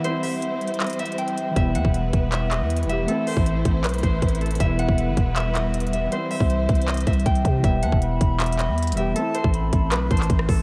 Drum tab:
HH |x-----------o-----------x-----------x---x---x---x---x-x-x---x---x---x---x-----x-----x-----------|x-----------x-----------x-----------x-----------x-----------x-----------x---x---x---x-----------|x-----------o-----------x-----------x-----------x--x--x--x--x-----------x---x---x---x--x--x--x--|x-----------x-----------x-----------x-----------x-----------x-----------x---x---x---x-----------|
CP |------------------------------------------------x-----------------------------------------------|------------------------------------------------x-----------x-----------------------------------|------------------------------------------------x-----------------------------------------------|------------------------------------------------x-----------x-----------------------------------|
SD |------------------------------------------------------------------------------------------------|------------------------------------------------------------------------------------------------|------------------------------------------------------------------------------------------------|------------------------------------------------------------------------------------------------|
BD |------------------------------------------------------------------------------------------------|o-----------------o-----------------o-----------------------------------------------------------|------------------o-----------------o-----------------------o-----------o-----------------------|o-----------------o-----------------o-----------------------------------------------------------|

HH |x-----------o-----------x-----------x---x---x---x---x-x-x---x---x---x---x-----x-----x-----------|x-----------x-----------x-----------x-----------x---x---x---x-----------x--x--x--x--x-----------|x-----------x-----------x-----------x-----------x-----------x---x---x---x-----------o-----------|
CP |------------------------------------------------x-----------------------------------------------|------------------------------------------------x-----------x-----------------------------------|------------------------------------------------x-----------------x-----------------------------|
SD |------------------------------------------------------------------------------------------------|------------------------------------------------------------------------------------------------|------------------------------------------------r-----------------------------r-----------------|
BD |------------------o-----------------o-----------------------o-----------o-----------o-----------|o-----------------o-----------------o-----------------------------------------------------------|------------------o-----------------o-----------------------o-----------o-----------o-----------|